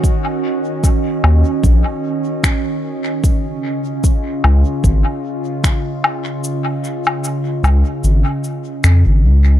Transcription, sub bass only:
X:1
M:4/4
L:1/16
Q:"Swing 16ths" 1/4=75
K:Dbmix
V:1 name="Sub bass" clef=bass
z6 E,, z B,,, z6 z | z6 D,, z A,,, z6 z | z6 D,, z A,,, z3 F,, A,,, D,,2 |]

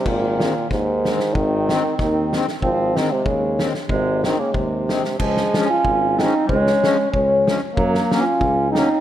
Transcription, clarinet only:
X:1
M:2/4
L:1/16
Q:"Swing" 1/4=94
K:Ab
V:1 name="Clarinet"
E,4 E,4 | C4 C3 z | C2 C A, A,2 z2 | A,2 C B, A,4 |
[K:Db] F,3 D3 C2 | A,4 A,3 z | G,3 D3 C2 |]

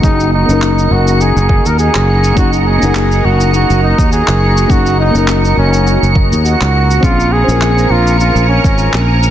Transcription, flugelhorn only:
X:1
M:4/4
L:1/16
Q:"Swing 16ths" 1/4=103
K:Gblyd
V:1 name="Flugelhorn"
E2 E4 G2 A3 B A4 | G2 A4 G2 G2 E2 A4 | G2 E2 E2 D4 z2 G4 | F2 A4 F2 F2 D4 z2 |]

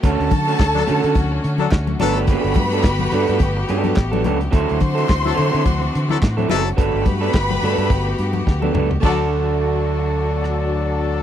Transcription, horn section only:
X:1
M:4/4
L:1/16
Q:"Swing 16ths" 1/4=107
K:D
V:1 name="Horn section"
z4 z [F,DA] z4 z [F,DA] z2 [F,DA]2 | z16 | z4 z [F,EA] z4 z [F,EA] z2 [F,EA]2 | z16 |
[F,DA]16 |]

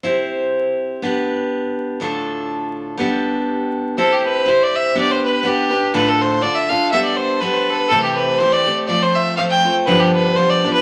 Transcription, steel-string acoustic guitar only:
X:1
M:2/4
L:1/8
Q:"Swing" 1/4=122
K:C
V:1 name="Steel-string acoustic guitar"
[CEGc]4 | [B,DGB]4 | [D,,A,,D,DFA]4 | [G,B,DGA]4 |
[CEGc]2 [CEGc]2 | [B,DGB]2 [B,DGB] [DGB] | [D,,A,,D,DFA]2 [D,DFA] [D,DFA] | [G,B,DA]2 [G,B,DA]2 |
[C,E,A,CG]2 [E,A,CG] [A,CG] | [F,A,CF]2 [F,A,CF] [A,CF] | [G,,D,F,G,B,D]2 [F,G,B,D] [F,G,B,D] |]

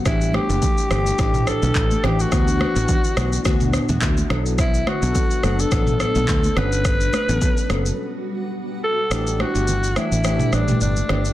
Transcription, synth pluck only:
X:1
M:4/4
L:1/16
Q:"Swing 16ths" 1/4=106
K:Amix
V:1 name="Synth pluck"
[E,A,DG]3 [E,A,DG] z2 [E,A,DG] z [E,A,DG]3 [E,A,DG] z2 [E,A,DG] z | [E,B,DF]3 [E,B,DF] z2 [E,B,DF] z [E,B,DF]3 [E,B,DF] z2 [F,B,DA] z | z3 [F,B,DA] z2 [F,B,DA] z [F,B,DA]3 [F,B,DA] z2 [F,B,CA] z | z3 [F,B,CA] z2 [F,B,CA] z8 z |
[E,A,DG]3 [E,A,DG] z2 [E,A,DG] z [E,A,DG]3 [E,A,DG] z2 [E,A,DG] z |]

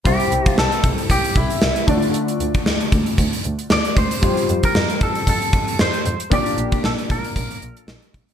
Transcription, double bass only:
X:1
M:4/4
L:1/8
Q:"Swing 16ths" 1/4=115
K:Cmix
V:1 name="Double bass" clef=bass
C,, C,, C,, C,, C,, C,, C,, D,,- | D,, D,, D,, D,, D,, D,, D,, D,, | F,, F,, F,, F,, F,, F,, F,, F,, | B,,, B,,, B,,, B,,, B,,, B,,, B,,, B,,, |]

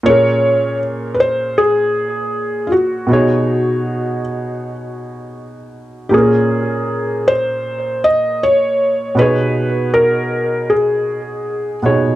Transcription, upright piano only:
X:1
M:4/4
L:1/8
Q:"Swing 16ths" 1/4=79
K:Bbphr
V:1 name="Upright piano"
[B,,B,DAB]8 | [=B,,=B,^D^G_d]8 | [B,,B,DAB]8 | [=B,,=B,^D^G_d]6- [B,,B,^DG_d] [B,,B,^DG_d] |]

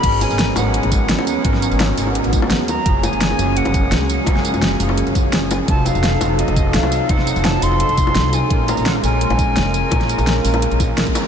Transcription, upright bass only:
X:1
M:4/4
L:1/16
Q:1/4=170
K:G#dor
V:1 name="Upright bass" clef=bass
G,,,3 G,,,3 G,,,3 G,,,3 D,,3 z | G,,,3 G,,,3 G,,,3 G,,,3 D,,3 z | F,,,3 F,,,3 F,,,3 F,,,3 C,,3 z | F,,,3 F,,,3 F,,,3 F,,,3 F,,,3 z |
=F,,,3 F,,,3 F,,,3 F,,,3 =C,,3 z | =F,,,3 F,,,3 F,,,3 F,,,3 =C,,3 z | A,,,3 A,,,3 A,,,3 A,,,3 E,,,3 z | A,,,3 A,,,3 A,,,3 A,,,3 A,,, z3 |]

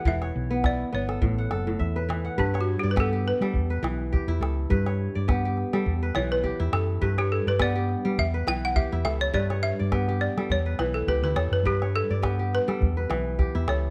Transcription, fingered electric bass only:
X:1
M:4/4
L:1/16
Q:"Swing 16ths" 1/4=104
K:Glyd
V:1 name="Fingered electric bass" clef=bass
E,,,2 B,,,4 G,,,2 A,,,2 F,,,2 E,,4 | G,,3 G,,4 G, E,,2 B,,,3 E,, C,,2 | G,,3 G,,4 G, E,,2 B,,,3 E,, F,,2 | G,,3 G,,4 G, E,,2 B,,,3 E,, C,,2 |
G,,3 G,,4 G, E,,2 B,,,2 C,, D,, E,, F,, | G,,3 G,,4 G, E,,2 B,,,3 E,, C,,2 |]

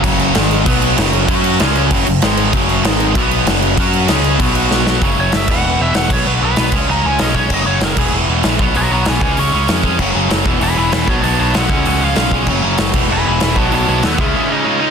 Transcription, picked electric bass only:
X:1
M:4/4
L:1/8
Q:1/4=193
K:B
V:1 name="Picked electric bass" clef=bass
F,,,2 G,,,2 B,,,2 F,,,2 | F,,2 C,,2 F,,, F,,, G,,,2 | F,,,2 G,,,2 B,,,2 F,,,2 | F,,2 C,,2 B,,,4 |
F,,, F,,, F,,, E,,, E,,, E,,, E,,, B,,, | B,,, B,,, B,,, C,, C,, C,, B,,,2 | F,,, F,,, F,,, E,,, E,,, E,,, A,,, B,,, | B,,, B,,, B,,, C,, C,, C,, ^E,,2 |
F,,, F,,, F,,, E,,, E,,, E,,, E,,, B,,, | B,,, B,,, z C,, C,, C,, B,,,2 | F,,, F,,, F,,, E,,, E,,, E,,, E,,, B,,, | B,,, B,,, D,, C,, z4 |]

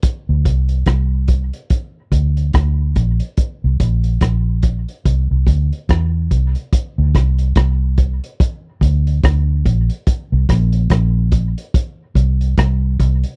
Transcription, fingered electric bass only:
X:1
M:4/4
L:1/16
Q:"Swing 16ths" 1/4=72
K:Bblyd
V:1 name="Fingered electric bass" clef=bass
z D,, C,,2 C,,3 z3 D,,2 D,,2 B,,, z | z C,, B,,,2 B,,,3 z C,, C,, D,, z E,,2 C,, z | z D,, C,,2 C,,3 z3 D,,2 D,,2 B,,, z | z C,, B,,,2 B,,,3 z3 C,,2 C,,2 C,, z |]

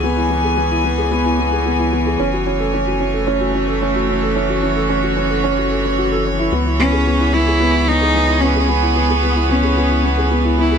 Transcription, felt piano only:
X:1
M:4/4
L:1/16
Q:1/4=111
K:C#m
V:1 name="Felt piano"
B, E B, G B, E B, G B, E B, G B, E B, G | C F C A C F C A C F C A C F C A | C F C A C F C A C F A C F A c E | B, E B, G B, E B, G B, E B, G B, E B, G |
B, E B, G B, E B, G B, E B, G B, E B, G |]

